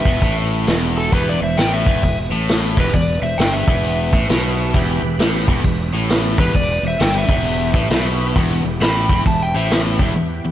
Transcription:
Already playing: lead electric guitar B4, electric slide guitar E5
0.05 fingered electric bass E1, distorted electric guitar E2, kick
0.22 fingered electric bass A1, distorted electric guitar A2, kick, open hi-hat
0.67 fingered electric bass E1, distorted electric guitar E2, snare, open hi-hat
0.97 lead electric guitar F#4, electric slide guitar A4
1.12 fingered electric bass E1, distorted electric guitar E2, lead electric guitar G4, electric slide guitar B4, kick, open hi-hat
1.29 lead electric guitar B4, electric slide guitar D5
1.41 fingered electric bass E1, distorted electric guitar E2, lead electric guitar C5, electric slide guitar E5
1.57 fingered electric bass A1, distorted electric guitar A2, lead electric guitar E5, electric slide guitar G5, snare, open hi-hat
1.72 lead electric guitar B4, electric slide guitar E5
1.86 fingered electric bass E1, distorted electric guitar E2, kick
2.03 fingered electric bass E1, distorted electric guitar E2, kick, open hi-hat
2.31 fingered electric bass A1, distorted electric guitar A2
2.49 snare, open hi-hat
2.77 fingered electric bass E1, distorted electric guitar E2, lead electric guitar G4, electric slide guitar B4, kick
2.94 fingered electric bass E1, distorted electric guitar E2, lead electric guitar B4, electric slide guitar D5, kick, open hi-hat
3.22 fingered electric bass E1, distorted electric guitar E2, lead electric guitar C5, electric slide guitar E5
3.38 fingered electric bass G1, distorted electric guitar G2, lead electric guitar E5, electric slide guitar G5, snare, open hi-hat
3.53 lead electric guitar B4, electric slide guitar E5
3.67 fingered electric bass E1, distorted electric guitar E2, kick
3.84 open hi-hat
4.13 fingered electric bass A1, distorted electric guitar A2, kick
4.29 fingered electric bass B1, distorted electric guitar B2, snare, open hi-hat
4.74 fingered electric bass E1, distorted electric guitar E2, tonewheel organ E4 G4 B4, kick, open hi-hat
5.02 fingered electric bass E1, distorted electric guitar E2
5.18 fingered electric bass A1, distorted electric guitar A2, snare, open hi-hat
5.48 fingered electric bass E1, distorted electric guitar E2, kick
5.64 fingered electric bass E1, distorted electric guitar E2, kick, open hi-hat
5.93 fingered electric bass A1, distorted electric guitar A2
6.10 snare, open hi-hat
6.38 fingered electric bass E1, distorted electric guitar E2, lead electric guitar G4, electric slide guitar B4, kick
6.54 fingered electric bass E1, distorted electric guitar E2, lead electric guitar B4, electric slide guitar D5, kick, open hi-hat
6.83 fingered electric bass E1, distorted electric guitar E2, lead electric guitar C5
6.88 electric slide guitar E5
6.98 fingered electric bass G1, distorted electric guitar G2, lead electric guitar E5, electric slide guitar G5, snare, open hi-hat
7.14 lead electric guitar B4, electric slide guitar E5
7.29 fingered electric bass E1, distorted electric guitar E2, kick
7.45 open hi-hat
7.74 fingered electric bass A1, distorted electric guitar A2, kick
7.90 fingered electric bass B1, distorted electric guitar B2, snare, open hi-hat
8.36 fingered electric bass E1, distorted electric guitar E2, tonewheel organ B3 E4 G4, kick, open hi-hat
8.64 fingered electric bass E1, distorted electric guitar E2
8.81 fingered electric bass A1, distorted electric guitar A2, lead electric guitar G5, electric slide guitar B5, snare, open hi-hat
9.09 fingered electric bass E1, distorted electric guitar E2, kick
9.26 fingered electric bass E1, distorted electric guitar E2, lead electric guitar E5, electric slide guitar A5, kick, open hi-hat
9.39 lead electric guitar E5, electric slide guitar G5
9.54 fingered electric bass A1, distorted electric guitar A2, lead electric guitar C5, electric slide guitar E5
9.71 snare, open hi-hat
9.99 fingered electric bass E1, distorted electric guitar E2, kick
10.16 distorted electric guitar E2
10.45 distorted electric guitar E2

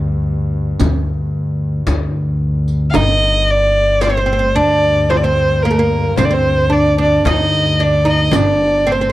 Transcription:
Already playing: upright bass D2, double bass G2
0.80 upright bass D2, riq, frame drum
1.87 upright bass D2, riq, frame drum
2.68 riq
2.90 violin F5, riq, frame drum
2.95 upright bass G1, double bass G2, oud D#4, violin D#5
3.48 violin D5, riq
4.01 oud C4, violin C5, riq, frame drum
4.10 oud C4
4.17 oud C4
4.26 oud C4
4.33 oud C4
4.39 oud C4
4.56 upright bass D2, oud D4, violin D5
5.10 oud C4, violin C5, frame drum
5.17 violin D5
5.23 oud C4, violin C5
5.62 oud A#3, violin A#4
5.71 oud A3
5.79 oud A#3
6.17 upright bass D2, oud C4, violin C5, riq, frame drum
6.25 violin D5
6.31 oud C4, violin C5
6.70 oud D4, violin D5
6.98 oud D4, violin D5
7.25 upright bass D2, oud D#4, violin D#5, riq, frame drum
7.80 oud D4, violin D5
8.05 oud D#4, riq
8.10 violin D#5
8.31 upright bass G1, oud D4, violin D5, riq, frame drum
8.86 oud C4, riq
8.91 oud C4, violin C5
9.01 oud C4

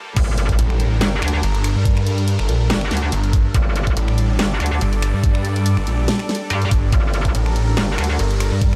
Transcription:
Already playing: supersaw synth G2 G3 A#3 A4, swell
0.16 wobble bass G1, supersaw synth G3 D4 A4 A#4, kick, closed hi-hat, crash, impact
0.38 closed hi-hat
0.49 kick, closed hi-hat
0.59 detuned saw bass A1, closed hi-hat
0.70 finger snap
0.80 closed hi-hat
1.01 wobble bass G1, snare, closed hi-hat
1.22 wobble bass D2, finger snap, closed hi-hat
1.28 closed hi-hat
1.43 detuned saw bass G1, closed hi-hat
1.55 closed hi-hat
1.64 finger snap, open hi-hat
1.76 detuned saw bass G2
1.85 kick, closed hi-hat
1.97 finger snap
2.07 closed hi-hat
2.18 closed hi-hat
2.28 closed hi-hat
2.39 detuned saw bass G1, finger snap
2.49 detuned saw bass A#1, closed hi-hat
2.70 wobble bass G1, snare, closed hi-hat
2.81 finger snap
2.91 wobble bass D2, snare, closed hi-hat
2.97 closed hi-hat
3.12 detuned saw bass G1, closed hi-hat
3.24 closed hi-hat
3.33 kick, open hi-hat
3.54 wobble bass G1, supersaw synth D5, kick, closed hi-hat
3.76 closed hi-hat
3.87 kick, closed hi-hat
3.97 detuned saw bass A1, closed hi-hat
4.08 finger snap
4.18 closed hi-hat
4.39 wobble bass G1, snare, closed hi-hat
4.60 wobble bass D2, finger snap, closed hi-hat
4.66 closed hi-hat
4.81 detuned saw bass G1, closed hi-hat
4.93 closed hi-hat
5.02 finger snap, open hi-hat
5.14 detuned saw bass G2
5.24 kick, closed hi-hat
5.35 finger snap
5.45 closed hi-hat
5.56 closed hi-hat
5.66 closed hi-hat
5.77 detuned saw bass G1, finger snap
5.87 detuned saw bass A#1, open hi-hat
6.08 snare, closed hi-hat
6.19 finger snap
6.29 snare, closed hi-hat
6.35 closed hi-hat
6.50 wobble bass G2, closed hi-hat
6.62 closed hi-hat
6.71 detuned saw bass G1, kick, open hi-hat
6.92 wobble bass G1, supersaw synth A#4, kick, closed hi-hat
7.14 closed hi-hat
7.25 kick, closed hi-hat
7.35 detuned saw bass A1, closed hi-hat
7.46 finger snap
7.56 closed hi-hat
7.77 wobble bass G1, snare, closed hi-hat
7.98 wobble bass D2, finger snap, closed hi-hat
8.04 closed hi-hat
8.19 detuned saw bass G1, closed hi-hat
8.31 closed hi-hat
8.40 finger snap, open hi-hat
8.52 detuned saw bass G2
8.62 kick, closed hi-hat

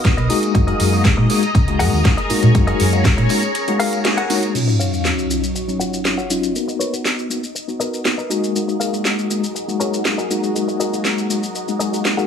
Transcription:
Already playing: string machine D#5
0.04 tine electric piano A#3 B3 D#4 F#4, kick, snare, closed hi-hat, tambourine
0.17 fingered electric bass B1, clean electric guitar A#4 B4 D#5, closed hi-hat
0.29 tine electric piano G#3 A#3 D#4 F#4, string machine G#4 A#5, clean electric guitar G#4 A#4 D#5, open hi-hat, tambourine
0.43 closed hi-hat, tambourine
0.54 fingered electric bass F#2, tine electric piano G#3 A#3 D#4 F#4, kick, closed hi-hat, tambourine
0.67 clean electric guitar G#4 A#4 D#5, closed hi-hat
0.80 fingered electric bass F#2, open hi-hat, tambourine
0.92 tine electric piano G#3 A#3 D#4 F#4, tambourine
1.05 kick, snare, closed hi-hat
1.17 fingered electric bass A#2, muted clean electric guitar stroke
1.29 tine electric piano G#3 A#3 D#4 F#4, muted clean electric guitar stroke, open hi-hat, tambourine
1.43 closed hi-hat, tambourine
1.55 fingered electric bass C#2, kick, closed hi-hat, tambourine
1.67 tine electric piano G#3 A#3 D#4 F#4, closed hi-hat
1.79 fingered electric bass F#2, clean electric guitar G#4 A#4 F#5, open hi-hat, tambourine
1.93 fingered electric bass D#2, tambourine
2.04 tine electric piano G#3 A#3 D#4 F#4, kick, snare, closed hi-hat
2.17 clean electric guitar G#4 A#4 D#5, closed hi-hat
2.29 tine electric piano G#3 A#3 D#4 F#4, string machine C#5, muted fingered electric bass stroke, open hi-hat, tambourine
2.43 fingered electric bass A#2, closed hi-hat, tambourine
2.54 tine electric piano G#3 A#3 D#4 F#4, kick, closed hi-hat, tambourine
2.67 clean electric guitar G#4 A#4 D#5, closed hi-hat
2.80 fingered electric bass F#2, open hi-hat, tambourine
2.92 tine electric piano G#3 A#3 D#4 F#4, closed hi-hat, tambourine
3.05 kick, snare, closed hi-hat, tambourine
3.17 fingered electric bass A#2, muted clean electric guitar stroke, closed hi-hat
3.29 tine electric piano G#3 A#3 D#4 F#4, muted clean electric guitar stroke, open hi-hat, tambourine
3.43 closed hi-hat, tambourine
3.55 closed hi-hat, tambourine
3.67 tine electric piano G#3 A#3 D#4 F#4, closed hi-hat
3.79 clean electric guitar G#4 A#4 F5, open hi-hat, tambourine
3.93 closed hi-hat, tambourine
4.04 tine electric piano G#3 A#3 D#4 F#4, snare, closed hi-hat, tambourine
4.17 clean electric guitar G#4 A#4 F#5, closed hi-hat
4.29 tine electric piano G#3 A#3 D#4 F#4, open hi-hat, tambourine
4.43 closed hi-hat, tambourine
4.54 tine electric piano F#3 C#4 D#4 F4, string machine F#3 D#5 C#6, crash, sub drop, shaker
4.67 muted clean electric guitar stroke, shaker
4.79 clean electric guitar F4 F#4 C#5 F5, shaker
4.92 tine electric piano F#3 C#4 D#4 F5, shaker
5.05 muted clean electric guitar stroke, snare, shaker
5.19 shaker
5.30 tine electric piano F#3 C#4 D#4 F4, shaker
5.44 shaker
5.55 muted clean electric guitar stroke, shaker
5.67 tine electric piano F#3 C#4 D#4, shaker
5.79 clean electric guitar F4 F#4 C#5 F#5, shaker
5.93 shaker
6.05 tine electric piano F#3 C#4 D#4 F4, snare, shaker
6.17 clean electric guitar F4 F#4 C#5 F#5, shaker
6.30 tine electric piano F#3 C#4 D#4 F4, shaker
6.42 muted clean electric guitar stroke, shaker
6.55 tine electric piano A#3 B3 D#4 F#4, shaker
6.68 muted clean electric guitar stroke, shaker
6.79 clean electric guitar A#4 B4 C#5, shaker
6.93 tine electric piano B3 D#4 F#4, shaker
7.04 muted clean electric guitar stroke, snare, shaker
7.19 shaker
7.29 tine electric piano A#3 B3 D#4 F#4, shaker
7.44 shaker
7.55 muted clean electric guitar stroke, shaker
7.68 tine electric piano B3 D#4 F#4, shaker
7.80 clean electric guitar A#4 B4 D#5, shaker
7.94 shaker
8.04 tine electric piano A#3 B3 D#4 F#4, snare, shaker
8.18 clean electric guitar A#4 B4 D#5, shaker
8.30 tine electric piano G#3 A#3 D#4 F#4, string machine F#4 G#4 A#5, clean electric guitar F#4 G#4 A#4 D#5, shaker
8.44 shaker
8.55 tine electric piano G#3 A#3 D#4 F#4, shaker
8.68 muted clean electric guitar stroke, shaker
8.80 clean electric guitar F#4 G#4 A#4 F5, shaker
8.92 tine electric piano G#3 A#3 D#4 F#4, shaker
9.05 muted clean electric guitar stroke, snare, shaker
9.19 shaker
9.30 tine electric piano G#3 A#3 D#4 F#4, shaker
9.44 shaker
9.55 muted clean electric guitar stroke, shaker
9.67 tine electric piano G#3 A#3 D#4 F#4, shaker
9.80 clean electric guitar F#4 G#4 A#4 C#5, shaker
9.94 shaker
10.05 tine electric piano G#3 A#3 D#4 F#4, snare, shaker
10.18 clean electric guitar F#4 G#4 A#4 D#5, shaker
10.30 tine electric piano G#3 A#3 D#4 F#4, shaker
10.43 muted clean electric guitar stroke, shaker
10.55 tine electric piano G#3 A#3 D#4 F#4, shaker
10.68 muted clean electric guitar stroke, shaker
10.80 clean electric guitar F#4 G#4 A#4 D#5, shaker
10.92 tine electric piano G#3 A#3 D#4 F#4, shaker
11.05 muted clean electric guitar stroke, snare, shaker
11.18 shaker
11.30 tine electric piano G#3 A#3 D#4 F#4, shaker
11.43 shaker
11.55 muted clean electric guitar stroke, shaker
11.67 tine electric piano G#3 A#3 D#4 F#4, shaker
11.79 clean electric guitar F#4 G#4 A#4 D#5, shaker
11.92 tine electric piano G#3 A#3 D#4 F#4, shaker
12.05 snare, shaker
12.17 tine electric piano G#3 A#3 D#4 F#4, clean electric guitar F#4 G#4 A#4 F#5, shaker

